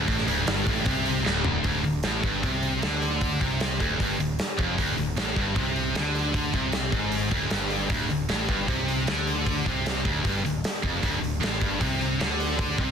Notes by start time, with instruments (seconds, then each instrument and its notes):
0.08 picked electric bass A1, distorted electric guitar A2, kick, open hi-hat
0.18 snare
0.28 picked electric bass D1, distorted electric guitar D2, open hi-hat
0.47 picked electric bass G1, distorted electric guitar G2, snare, open hi-hat
0.67 picked electric bass A1, distorted electric guitar A2, kick, open hi-hat
0.86 picked electric bass C2, distorted electric guitar C3, kick, open hi-hat
1.06 open hi-hat
1.26 picked electric bass D1, distorted electric guitar D2, snare
1.44 floor tom
1.64 picked electric bass D1, distorted electric guitar D2, kick, open hi-hat
1.84 picked electric bass D1, distorted electric guitar D2, open hi-hat
2.03 picked electric bass A1, distorted electric guitar A2, snare, open hi-hat
2.23 picked electric bass G1, distorted electric guitar G2, kick, open hi-hat
2.43 picked electric bass C2, distorted electric guitar C3, kick, open hi-hat
2.63 open hi-hat
2.82 picked electric bass D2, distorted electric guitar D3, snare, open hi-hat
3.02 open hi-hat
3.21 kick, open hi-hat
3.40 picked electric bass C2, distorted electric guitar C3, kick, open hi-hat
3.60 snare, open hi-hat
3.79 picked electric bass D1, distorted electric guitar D2, kick, open hi-hat
4.00 picked electric bass G1, distorted electric guitar G2, kick, open hi-hat
4.19 picked electric bass D1, distorted electric guitar D2, open hi-hat
4.39 snare, open hi-hat
4.57 picked electric bass F1, distorted electric guitar F2, kick, open hi-hat
4.78 picked electric bass D1, distorted electric guitar D2, kick, open hi-hat
4.98 picked electric bass D1, distorted electric guitar D2, open hi-hat
5.16 picked electric bass A1, distorted electric guitar A2, snare, open hi-hat
5.36 picked electric bass G1, distorted electric guitar G2, kick, open hi-hat
5.56 picked electric bass C2, distorted electric guitar C3, kick, open hi-hat
5.76 open hi-hat
5.95 picked electric bass D2, distorted electric guitar D3, snare, open hi-hat
6.15 open hi-hat
6.34 kick, open hi-hat
6.53 picked electric bass C2, distorted electric guitar C3, kick, open hi-hat
6.72 snare, open hi-hat
6.92 picked electric bass G#1, distorted electric guitar G#2, kick, open hi-hat
7.12 open hi-hat
7.31 picked electric bass D1, distorted electric guitar D2, kick, open hi-hat
7.51 picked electric bass G1, distorted electric guitar G2, snare, open hi-hat
7.70 open hi-hat
7.90 picked electric bass D1, distorted electric guitar D2, kick, open hi-hat
8.10 picked electric bass D1, distorted electric guitar D2, open hi-hat
8.29 picked electric bass A1, distorted electric guitar A2, snare, open hi-hat
8.49 picked electric bass G1, distorted electric guitar G2, kick, open hi-hat
8.68 picked electric bass C2, distorted electric guitar C3, kick, open hi-hat
8.88 open hi-hat
9.07 picked electric bass D2, distorted electric guitar D3, snare, open hi-hat
9.27 open hi-hat
9.46 kick, open hi-hat
9.66 picked electric bass C2, distorted electric guitar C3, kick, open hi-hat
9.86 snare, open hi-hat
10.05 picked electric bass D1, distorted electric guitar D2, kick, open hi-hat
10.25 picked electric bass G1, distorted electric guitar G2, kick, open hi-hat
10.45 picked electric bass D1, distorted electric guitar D2, open hi-hat
10.64 snare, open hi-hat
10.83 picked electric bass F1, distorted electric guitar F2, kick, open hi-hat
11.02 picked electric bass D1, distorted electric guitar D2, kick, open hi-hat
11.21 picked electric bass D1, distorted electric guitar D2, open hi-hat
11.40 picked electric bass A1, distorted electric guitar A2, snare, open hi-hat
11.61 picked electric bass G1, distorted electric guitar G2, kick, open hi-hat
11.81 picked electric bass C2, distorted electric guitar C3, kick, open hi-hat
12.01 open hi-hat
12.20 picked electric bass D2, distorted electric guitar D3, snare, open hi-hat
12.40 open hi-hat
12.59 kick, open hi-hat
12.78 picked electric bass C2, distorted electric guitar C3, kick, open hi-hat